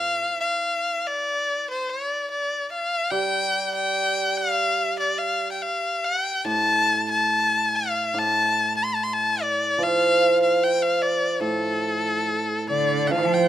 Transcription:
Already playing: hammered dulcimer A2 F4, erhu F5
0.40 erhu F5
1.06 erhu D5
1.71 erhu C5
1.89 erhu D5
2.31 erhu D5
2.73 erhu F5
3.10 hammered dulcimer G3, erhu G5
3.75 erhu G5
4.37 erhu F5
5.00 erhu D5
5.18 erhu F5
5.52 erhu G5
5.62 erhu F5
6.04 erhu G5
6.45 hammered dulcimer A2, erhu A5
7.12 erhu A5
7.75 erhu F5
8.14 hammered dulcimer A2
8.18 erhu A5
8.77 erhu A5
8.84 erhu C6
8.95 erhu A5
9.03 erhu C6
9.13 erhu A5
9.42 erhu D5
9.78 hammered dulcimer F3
9.82 erhu F5
10.43 erhu F5
10.64 erhu G5
10.82 erhu F5
11.02 erhu D5
11.40 hammered dulcimer A2, erhu A4
12.70 cello D3, dizi D5, erhu D5
13.07 hammered dulcimer F3, dizi F5, erhu G5
13.11 cello F3, erhu F5
13.25 dizi A5
13.33 dizi G5, erhu G5

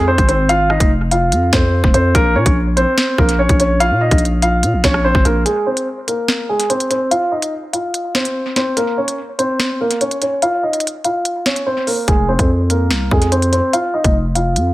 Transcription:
Already playing: 808-style bass F2
0.08 grand piano C4 C5
0.18 808-style bass G#1, kick, closed hi-hat
0.28 grand piano C4 C5, closed hi-hat
0.49 grand piano F4 F5, closed hi-hat
0.70 grand piano D#4 D#5, cross-stick
0.80 808-style bass F1, kick, closed hi-hat
1.11 grand piano F4 F5, closed hi-hat
1.32 808-style bass F2, closed hi-hat
1.53 808-style bass F2, grand piano C4 C5, kick, snare, closed hi-hat
1.84 808-style bass F1, kick
1.94 808-style bass F2, grand piano C4 C5, closed hi-hat
2.15 808-style bass A#1, grand piano A#3 A#4, kick, closed hi-hat
2.35 808-style bass A#2, grand piano C#4 C#5
2.46 808-style bass A#1, kick, closed hi-hat
2.77 grand piano C4 C5, closed hi-hat
2.98 snare, closed hi-hat
3.18 808-style bass A#1, grand piano A#3 A#4, kick
3.29 closed hi-hat
3.39 grand piano C#4 C#5
3.49 808-style bass A#1, kick, closed hi-hat
3.60 grand piano C#4 C#5, closed hi-hat
3.80 grand piano F4 F5, closed hi-hat
3.91 808-style bass A#2
4.01 grand piano D#4 D#5
4.11 808-style bass A#1, kick, closed hi-hat
4.18 closed hi-hat
4.25 closed hi-hat
4.42 grand piano F4 F5, closed hi-hat
4.63 808-style bass A#2, closed hi-hat
4.73 808-style bass A#1
4.84 808-style bass A#1, grand piano C#4 C#5, kick, snare, closed hi-hat
4.94 cross-stick
5.05 grand piano C4 C5
5.15 808-style bass G#1, kick
5.25 808-style bass A#1, grand piano A#3 A#4, closed hi-hat
5.45 grand piano G#3 G#4, closed hi-hat
5.66 grand piano C4 C5
5.77 closed hi-hat
6.08 grand piano A#3 A#4, closed hi-hat
6.28 snare
6.49 grand piano G#3 G#4
6.60 closed hi-hat
6.70 grand piano C4 C5, closed hi-hat
6.80 closed hi-hat
6.90 grand piano C4 C5, closed hi-hat
7.11 grand piano F4 F5, closed hi-hat
7.32 grand piano D#4 D#5
7.42 closed hi-hat
7.73 grand piano F4 F5, closed hi-hat
7.94 closed hi-hat
8.15 grand piano C4 C5, snare, closed hi-hat
8.25 closed hi-hat
8.56 grand piano C4 C5, snare, closed hi-hat
8.77 grand piano A#3 A#4, closed hi-hat
8.98 grand piano C#4 C#5
9.08 closed hi-hat
9.39 grand piano C4 C5, closed hi-hat
9.60 snare
9.81 grand piano A#3 A#4
9.91 closed hi-hat
10.01 grand piano C#4 C#5, closed hi-hat
10.11 closed hi-hat
10.22 grand piano C#4 C#5, closed hi-hat
10.42 grand piano F4 F5, closed hi-hat
10.63 grand piano D#4 D#5
10.73 closed hi-hat
10.80 closed hi-hat
10.87 closed hi-hat
11.04 grand piano F4 F5, closed hi-hat
11.25 closed hi-hat
11.46 grand piano C#4 C#5, snare, closed hi-hat
11.56 closed hi-hat
11.66 grand piano C4 C5
11.87 grand piano A#3 A#4, open hi-hat
12.08 808-style bass F1, grand piano G#3 G#4, kick, closed hi-hat
12.29 grand piano C4 C5
12.39 808-style bass F2, kick, closed hi-hat
12.70 grand piano A#3 A#4, closed hi-hat
12.91 808-style bass C2, snare
13.11 808-style bass F2, grand piano G#3 G#4, kick
13.22 closed hi-hat
13.32 grand piano C4 C5, closed hi-hat
13.42 closed hi-hat
13.53 grand piano C4 C5, closed hi-hat
13.73 grand piano F4 F5, closed hi-hat
13.94 grand piano D#4 D#5
14.04 808-style bass F1, kick, closed hi-hat
14.35 grand piano F4 F5, closed hi-hat
14.56 808-style bass F2, closed hi-hat

